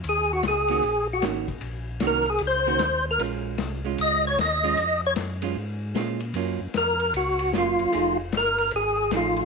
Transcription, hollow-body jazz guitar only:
X:1
M:4/4
L:1/8
Q:"Swing" 1/4=152
K:Bbm
V:1 name="Hollow-body jazz guitar"
z3 [E,B,DG] z2 [E,B,DG] z | z2 [E,B,DG] z2 [E,B,DG] z2 | [A,DF]3 [A,DF]3 z [A,DF] | z3 [A,DF] z2 [A,DF] z |
[G,B,DF] z4 z [G,B,DF]2 | [F,=A,E^G] z4 z [F,A,EG]2 |]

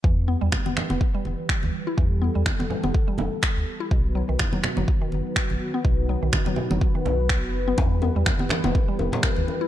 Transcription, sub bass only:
X:1
M:4/4
L:1/16
Q:"Swing 16ths" 1/4=124
K:Em
V:1 name="Sub bass" clef=bass
E,,3 E,, z3 E,,, z2 E,,, z2 D,, z2 | E,,3 E,, z3 E,,, z2 E,,, z2 D,, z2 | B,,,3 B,,, z3 F,,, z2 F,,, z2 A,,, z2 | B,,,3 B,,, z3 F,,, z2 B,,,3 F,,,3 |
E,,3 E,, z3 E,,, z2 E,,, z2 D,, z2 |]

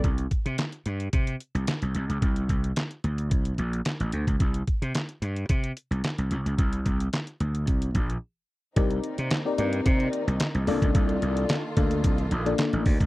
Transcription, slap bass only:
X:1
M:4/4
L:1/16
Q:1/4=110
K:Cdor
V:1 name="Slap bass" clef=bass
C,,2 z C, z2 G,,2 C,2 z C,, z C,, C,, _D,, | C,,2 C,,2 z2 D,,2 C,,2 B,,,2 z A,,, D,, _D,, | C,,2 z C, z2 G,,2 C,2 z C,, z C,, C,, _D,, | C,,2 C,,2 z2 D,,2 C,,2 B,,,2 z4 |
C,,2 z C, z2 G,,2 C,2 z C,, z C,, C,, _D,, | C,,2 C,,2 z2 D,,2 C,,2 B,,,2 z A,,, D,, _D,, |]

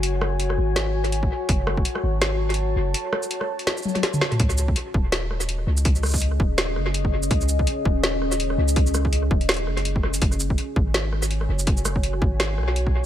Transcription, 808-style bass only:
X:1
M:4/4
L:1/8
Q:"Swing 16ths" 1/4=165
K:F#dor
V:1 name="808-style bass" clef=bass
F,,,3 G,,,4 z | F,,,2 z G,,,4 F,,, | z8 | C,,2 z D,,,4 C,,- |
C,,3 D,,,2 F,,,3 | C,,2 z D,,,4 C,,- | C,,3 D,,,2 F,,,3 | F,,,2 z G,,,4 F,,,- |
F,,,3 G,,,2 B,,,3 |]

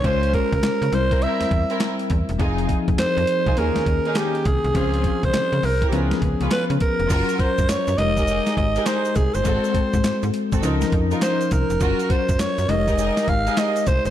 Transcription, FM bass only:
X:1
M:4/4
L:1/16
Q:"Swing 16ths" 1/4=102
K:Dblyd
V:1 name="FM bass" clef=bass
D,,3 D,, D, D, C,,3 =E,, E,, z3 E,, =E,,, | F,,,3 F,,, F,, F,, z C,, E,, E,, E,, z3 C,, C,, | D,,3 D,, z D, C,,2 D,,2 D,, D,, z D, z F,,, | [K:Gblyd] G,,, z G,, G,, G,, G,, F,,,4 A,,,2 z2 C,, =G,,, |
A,,, z A,, A,, A,, A,, z A,,, D,,2 F,,2 z2 C,, F,,, | G,,, z G,, G,, z G,, F,,,4 A,,,2 z2 C,, =G,,, |]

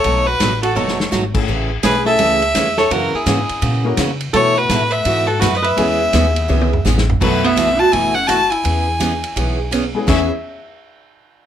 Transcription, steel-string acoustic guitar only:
X:1
M:4/4
L:1/16
Q:"Swing" 1/4=167
K:E
V:1 name="Steel-string acoustic guitar"
[B,,F,A,DF]2 z2 [B,,F,A,DF] z3 [B,,F,A,DF]2 z2 [B,,F,A,DF] z3 | [C,E,A,CG]2 z2 [C,E,A,CG] z3 [C,E,A,CG]2 z2 [C,E,A,CG] z3 | [C,E,^A,CF]2 z2 [C,E,A,CF] z3 [C,E,A,CF]2 z2 [C,E,A,CF] z3 | [B,,E,A,EF]2 z2 [B,,E,A,EF] z3 [B,,E,A,EF]2 z2 [B,,E,A,EF] z3 |
[E,B,CG]2 z2 [E,B,CG] z3 [E,B,CG]2 z2 [E,B,CG] z3 | [B,,E,A,EF]2 z2 [B,,E,A,EF] z3 [B,,E,A,EF]2 z2 [B,,E,A,EF] z3 | [E,B,CG]2 z2 [E,B,CG] z3 [E,B,CG]2 z2 [E,B,CG] z3 | [E,B,CG]2 z12 z2 |]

